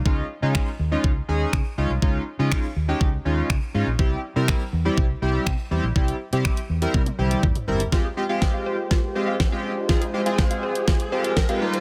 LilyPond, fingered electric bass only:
\new Staff \with { instrumentName = "Fingered electric bass" } { \clef bass \time 4/4 \key f \minor \tempo 4 = 122 des,8 r16 des8 r16 ees,8 des,8 ees,8 des16 r16 des,16 c,16 | des,8 r16 des8 r16 ees,8 des,8 ees,8 des16 r16 aes,16 bes,,16 | c,8 r16 c8 r16 e,8 c,8 c,8 c16 r16 e,16 bes,,16 | c,8 r16 c8 r16 e,8 c8 c,8 e,16 r16 g,,8 |
r1 | r1 | }